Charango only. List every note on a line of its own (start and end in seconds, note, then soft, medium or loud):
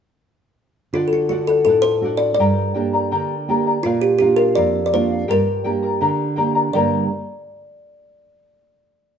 0.94 1.29 A4 medium
0.94 1.30 D5 medium
0.94 1.31 F#5 medium
1.30 1.48 A4 medium
1.30 1.49 D5 medium
1.30 1.48 F#5 medium
1.49 1.67 D5 soft
1.49 1.67 F#5 soft
1.68 2.03 A4 medium
1.68 2.03 D5 medium
1.68 2.04 F#5 medium
2.04 2.22 A4 soft
2.04 2.21 D5 medium
2.04 2.20 F#5 medium
2.21 2.39 D5 soft
2.21 2.39 F#5 soft
2.39 2.75 G4 medium
2.39 2.74 A#4 medium
2.39 2.75 D5 medium
2.39 2.73 G5 medium
2.39 2.75 A#5 medium
2.75 2.93 A#4 soft
2.75 2.93 D5 medium
2.75 2.93 G5 medium
2.75 2.92 A#5 medium
2.93 3.10 A#4 soft
2.93 3.11 D5 soft
2.93 3.11 A#5 soft
3.11 3.48 G4 medium
3.11 3.48 A#4 medium
3.11 3.48 D5 medium
3.11 3.48 G5 medium
3.11 3.48 A#5 medium
3.49 3.67 A#4 medium
3.49 3.66 D5 medium
3.49 3.66 G5 medium
3.49 3.66 A#5 medium
3.67 3.84 A#4 soft
3.67 3.84 D5 soft
3.67 3.84 A#5 soft
3.85 4.19 A#4 medium
3.85 4.20 D5 medium
3.85 4.21 F5 medium
4.20 4.38 A#4 medium
4.20 4.39 D5 soft
4.20 4.38 F5 medium
4.39 4.56 D5 soft
4.39 4.57 F5 soft
4.57 4.92 A#4 medium
4.57 4.93 D5 medium
4.57 4.93 F5 medium
4.93 5.11 A#4 medium
4.93 5.11 D5 medium
4.93 5.10 F5 medium
5.11 5.28 D5 soft
5.11 5.28 F5 soft
5.28 5.65 G4 medium
5.28 5.64 A#4 medium
5.28 5.64 D5 medium
5.28 5.63 G5 medium
5.28 5.65 A#5 medium
5.64 5.83 A#4 medium
5.64 5.82 D5 medium
5.64 5.83 G5 medium
5.64 5.81 A#5 soft
5.83 6.00 A#4 soft
5.83 6.00 D5 soft
5.83 6.01 A#5 soft
6.01 6.37 G4 medium
6.01 6.36 A#4 medium
6.01 6.36 D5 medium
6.01 6.35 G5 medium
6.01 6.37 A#5 medium
6.36 6.55 A#4 medium
6.36 6.54 D5 medium
6.36 6.55 G5 medium
6.36 6.54 A#5 medium
6.55 6.74 A#4 soft
6.55 6.74 D5 soft
6.55 6.74 A#5 soft
6.74 7.03 G4 medium
6.74 7.04 A#4 medium
6.74 7.04 D5 medium
6.74 7.03 G5 medium
6.74 7.04 A#5 medium